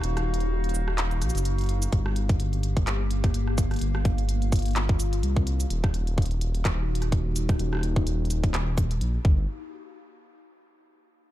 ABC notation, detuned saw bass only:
X:1
M:4/4
L:1/16
Q:"Swing 16ths" 1/4=127
K:Eb
V:1 name="Detuned saw bass" clef=bass
E,,,8- E,,,2 B,,, _G,,,4- G,,, | G,,,16 | G,,,12 C,,4 | E,,,16 |
E,,,12 B,,, z G,,,2 | z16 |]